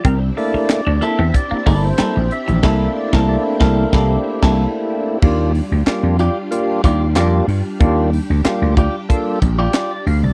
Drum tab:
CC |----------------|x----------x----|x---------------|----------------|
HH |x-o-x-x-x-o-x-xx|----------------|--o-x-x-x-x-x-o-|x-o-x-x-x-x-x-o-|
CP |----x-------x---|----------------|----x-------x---|----x-------x---|
SD |----o-------o---|o--o--o-o--o----|----o-------o---|----o-------o---|
BD |o-------o-o-----|o--o--o-o--o----|o---------o-----|o-----o-o-o-----|